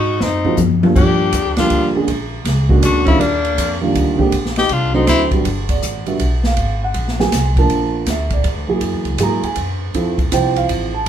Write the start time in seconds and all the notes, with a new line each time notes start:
Already playing: G#2 D#4 F#4
0.20 F#2 C4 D#4, snare
0.45 F3 G#3 A#3 C4 F#4, floor tom
0.57 F2, hi-hat pedal, high tom
0.83 F3 G3 A#3 D4 F4, high tom
0.95 G2 D4 G4, kick, crash
1.32 F2, kick, hi-hat pedal, ride
1.45 D2
1.57 A#1 F3 G3 A#3 D4 F4 G4, snare, ride
1.70 D2, kick, ride
1.95 D3 G#3 A#3 C#4 G#4, muted upright bass stroke
2.08 A#1, kick, ride
2.45 C#2, kick, snare, ride
2.69 D3 G#3 A#3 C#4 F#4, kick
2.82 D2 D4 F#4, kick, hi-hat pedal, ride
3.05 D#3 G3 A#3 C#4 D4 E4 F4, kick, ride
3.20 D#2 A#3 D4, kick, ride
3.45 ride
3.58 F2, kick, hi-hat pedal, ride
3.81 D#3 G3 A#3 D4 F4
3.95 D2, kick, ride
4.18 D3 G#3 A#3 C4 G4, muted upright bass stroke, kick
4.32 A#1, kick, ride
4.45 snare
4.56 D#4 G4, snare, ride
4.69 C2 D4 F4, kick, ride
4.94 D3 F#3 A3 C4 D#4 F#4
5.07 D2 C4 E4, kick, snare, hi-hat pedal, ride
5.31 D3 F#3 G3 B3 G4, kick, ride
5.45 G1, kick, ride
5.69 D5, kick, ride
5.82 A1, kick, hi-hat pedal
6.06 D3 G3 B3 F#4 E5, ride
6.19 B1, kick, ride
6.44 F5, snare
6.57 G#1, kick, ride
6.84 F#5
6.94 A#1, kick, ride
7.08 snare
7.19 F#3 A#3 C4 G#4 G#5, snare
7.32 C2, kick, snare, hi-hat pedal, ride
7.56 F3 A#3 D4 A#4 A5, kick, ride
7.70 A#1, kick, ride
8.06 D2 E5, kick, snare, hi-hat pedal, ride
8.30 D5, kick, ride
8.44 E2, kick, ride
8.56 D2
8.68 A#1 F#3 A#3 E4 G#4
8.81 F#2, kick, ride
8.92 E2
9.05 C#2, ride
9.18 G#2 F#3 A#3 E4 G#4, kick, hi-hat pedal, ride
9.23 A#5
9.43 G#5, muted upright bass stroke, ride
9.56 F#2, kick, ride
9.94 F2 F3 C4 E4 A4, kick, ride
10.18 kick, ride
10.31 C2 F3 C4 E4 C5 G5, kick, hi-hat pedal, ride
10.56 F5, ride
10.69 A1, kick, ride
10.94 A5